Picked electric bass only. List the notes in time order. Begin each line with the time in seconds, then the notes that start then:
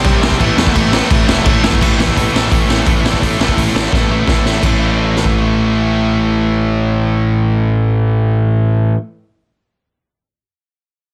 0.05 C2
0.40 A1
0.58 E2
0.76 A1
1.10 A1
1.27 E1
1.46 A1
1.64 G1
1.81 A1
1.98 A1
2.16 A1
2.35 A1
2.52 A1
2.69 A1
2.87 A1
3.04 A1
3.22 A1
3.38 A1
3.57 A1
3.75 A1
3.92 A1
4.09 A1
4.28 A1
4.44 A1
4.63 A1